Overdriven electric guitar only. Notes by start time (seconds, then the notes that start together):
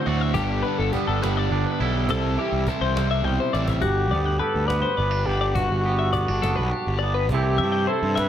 Already playing: D3
0.06 A3 C4 F#4
0.33 G2 D3 G3 B3 D4
0.64 G3 B3 D4
0.92 D3 G3 B3 D4
1.22 G2 D3 G3 B3 D4
1.80 G3 B3 D4
2.09 C3 G3 C4 E4
2.37 G3 C4 E4
2.66 C3 G3 C4 E4
2.95 C3 G3 C4 E4
3.54 G3 C4 E4